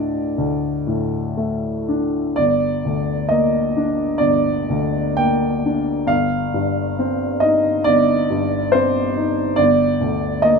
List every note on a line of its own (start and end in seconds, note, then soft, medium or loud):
0.00 0.34 D2 soft
0.00 0.87 A2 soft
0.00 0.19 A3 soft
0.00 0.67 D4 soft
0.00 1.36 D5 soft
0.00 2.40 D#5 medium
0.38 2.34 D2 soft
0.87 1.67 A2 soft
1.37 2.18 A3 soft
1.89 2.38 D4 soft
2.36 4.18 G1 soft
2.36 3.30 D5 medium
2.85 3.58 D2 soft
3.29 4.03 A#3 soft
3.29 4.20 D#5 medium
3.77 4.50 D4 soft
4.18 6.05 G1 soft
4.18 5.19 D5 medium
4.70 5.48 D2 soft
5.17 5.93 A#3 soft
5.17 6.09 G5 medium
5.65 6.10 D4 soft
6.06 7.81 G1 soft
6.06 7.41 F5 medium
6.54 7.25 G2 soft
6.99 7.70 C4 soft
7.40 8.13 D#4 soft
7.40 7.86 D#5 medium
7.84 9.55 G1 soft
7.84 8.73 D5 medium
8.30 9.00 G2 soft
8.72 9.42 C4 soft
8.72 9.58 C5 medium
9.16 9.59 D#4 soft
9.56 10.59 G1 medium
9.56 10.43 D5 medium
10.01 10.59 D2 soft
10.42 10.59 A#3 soft
10.42 10.59 D#5 medium